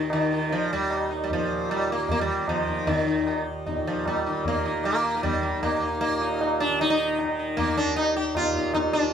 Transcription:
Already playing: tanpura D#2 A#2 D#3, sitar D#3
0.10 sitar D#3, tanpura D#3, tabla na
0.32 sitar D#4
0.50 sitar F3, tabla tin
0.72 tanpura D#2, sitar G3
0.90 tabla na
1.10 sitar D#4, tabla na
1.24 sitar G3
1.30 tanpura A#2, sitar F3, tabla tin, tabla ge
1.70 sitar G3, tabla na
1.91 tanpura D#3, sitar A#3
2.09 sitar A#3, tabla tin, tabla ge
2.21 sitar G3
2.48 tanpura D#3, sitar F3, tabla na, tabla ge
2.67 sitar D#4, tabla ge
2.87 sitar D#3, tabla tin, tabla ge
3.07 sitar D#4
3.11 tanpura D#2
3.27 sitar D#4, tabla na
3.66 tanpura A#2, sitar D#4, tabla tin, tabla ge
3.87 sitar F3
4.06 sitar G3, tabla na, tabla ge
4.26 tanpura D#3, sitar D#4
4.45 sitar A#3, tabla tin, tabla ge
4.66 sitar D#4
4.84 sitar A#3, tabla na
4.90 tanpura D#3
5.04 sitar D#4
5.17 sitar A#3
5.23 sitar G3, tabla tin, tabla ge
5.43 tanpura D#2, sitar D#4
5.63 sitar A#3, tabla na, tabla ge
5.82 sitar D#4
6.01 sitar A#3, tabla tin
6.07 tanpura A#2
6.21 sitar D#4, tabla na
6.41 sitar D#4, tabla na
6.60 sitar D4
6.68 tanpura D#3
6.80 sitar D#4, tabla tin
6.90 sitar D#4
7.19 sitar D#4, tabla na
7.25 tanpura D#3
7.39 sitar D#4
7.57 sitar A#3 D#4, tabla tin, tabla ge
7.77 sitar D4 D#4
7.85 tanpura D#2
7.96 sitar D#4, tabla na
8.17 sitar G4
8.35 sitar D#4 F4, tabla na, tabla ge
8.42 tanpura A#2
8.54 sitar D#4, tabla ge
8.74 sitar D#4, tabla na, tabla ge
8.93 sitar D4 D#4, tabla te
9.01 tanpura D#3

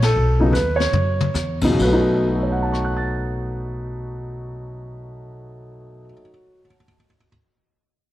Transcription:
Already playing: upright bass A#1
0.02 grand piano A4, snare, ride
0.16 upright bass B1, brush sweep
0.40 grand piano C#3 F#3 B3 D#4
0.53 upright bass D#2, grand piano B4, snare, hi-hat pedal
0.76 grand piano C#5
0.80 snare
0.92 upright bass F#2, mid tom
1.21 mid tom
1.34 upright bass E2, snare, hi-hat pedal
1.61 grand piano C#3 F#3 B3 D#4, kick, crash
1.68 grand piano B2
1.76 upright bass B1, grand piano F#3, kick, crash
1.82 grand piano A3 B4
1.93 grand piano D#4
2.28 grand piano F#4
2.35 grand piano A4
2.43 grand piano C#5
2.52 grand piano F#5
2.62 grand piano A5
2.72 grand piano C#6, cross-stick
2.85 grand piano F#6
2.97 grand piano A6

